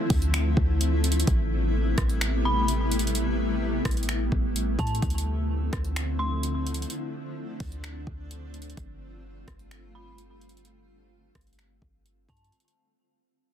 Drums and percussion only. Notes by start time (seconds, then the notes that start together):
0.10 kick, closed hi-hat, open hi-hat
0.22 closed hi-hat
0.34 finger snap, closed hi-hat
0.57 kick
0.81 closed hi-hat
1.04 closed hi-hat
1.12 closed hi-hat
1.20 closed hi-hat
1.27 kick, closed hi-hat
1.98 kick, cross-stick, closed hi-hat
2.09 closed hi-hat
2.21 finger snap, closed hi-hat
2.68 closed hi-hat
2.92 closed hi-hat
2.99 closed hi-hat
3.07 closed hi-hat
3.15 closed hi-hat
3.85 kick, cross-stick, closed hi-hat
3.91 closed hi-hat
3.97 closed hi-hat
4.03 closed hi-hat
4.09 finger snap, closed hi-hat
4.32 kick
4.56 closed hi-hat
4.79 kick, closed hi-hat
4.87 closed hi-hat
4.95 closed hi-hat
5.02 kick, closed hi-hat
5.10 closed hi-hat
5.18 closed hi-hat
5.73 kick, cross-stick, closed hi-hat
5.84 closed hi-hat
5.96 finger snap, closed hi-hat
6.43 closed hi-hat
6.67 closed hi-hat
6.74 closed hi-hat
6.82 closed hi-hat
6.90 closed hi-hat
7.60 kick, closed hi-hat, open hi-hat
7.72 closed hi-hat
7.84 finger snap, closed hi-hat
8.07 kick
8.31 closed hi-hat
8.54 closed hi-hat
8.62 closed hi-hat
8.70 closed hi-hat
8.77 kick, closed hi-hat
9.48 kick, cross-stick, closed hi-hat
9.59 closed hi-hat
9.71 finger snap, closed hi-hat
10.18 closed hi-hat
10.41 closed hi-hat
10.49 closed hi-hat
10.57 closed hi-hat
10.65 closed hi-hat
11.35 kick, cross-stick, closed hi-hat
11.41 closed hi-hat
11.47 closed hi-hat
11.53 closed hi-hat
11.59 finger snap, closed hi-hat
11.82 kick
12.06 closed hi-hat
12.29 kick, closed hi-hat
12.37 closed hi-hat
12.44 closed hi-hat
12.52 closed hi-hat
12.60 closed hi-hat
12.68 closed hi-hat